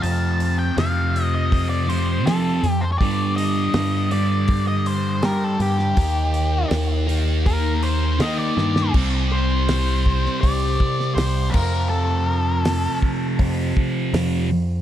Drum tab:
CC |----------------|----------------|----------------|x-------------x-|
HH |o-o-o-o-o-o-o-o-|o-o-o-o-o-o-o-o-|o-o-o-o-o-o-o---|----o---o---o---|
SD |----o-------o---|----o-------o--o|----o-------o-oo|----o--o---oo---|
BD |--------o-------|o-------o-------|o-------o-------|o-----o-o-o---o-|

CC |----------------|
HH |----o---o---o---|
SD |----o-------o---|
BD |------o-o-o-----|